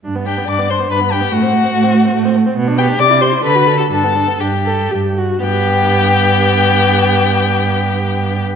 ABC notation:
X:1
M:3/4
L:1/16
Q:1/4=124
K:G
V:1 name="Violin"
z2 g2 d'2 c'2 b2 g2 | f8- f2 z2 | z2 g2 d'2 c'2 b3 a | a4 g4 z4 |
g12- | g12 |]
V:2 name="Violin"
z2 G2 d2 c2 B2 G2 | F8- F2 z2 | z2 G2 d2 c2 B3 A | A4 G4 z4 |
G12- | G12 |]
V:3 name="Viola"
D B, D B, D B, D B, D B, D B, | A, C A, C A, C A, C A, C A, C | B, D B, D G E G E A F A F | D B, D B, D2 A2 G2 F2 |
B,12- | B,12 |]
V:4 name="Cello" clef=bass
G,,4 G,,4 G,,4 | A,,4 A,,4 A,,4 | B,,4 C,4 D,4 | G,,4 G,,4 G,,4 |
G,,12- | G,,12 |]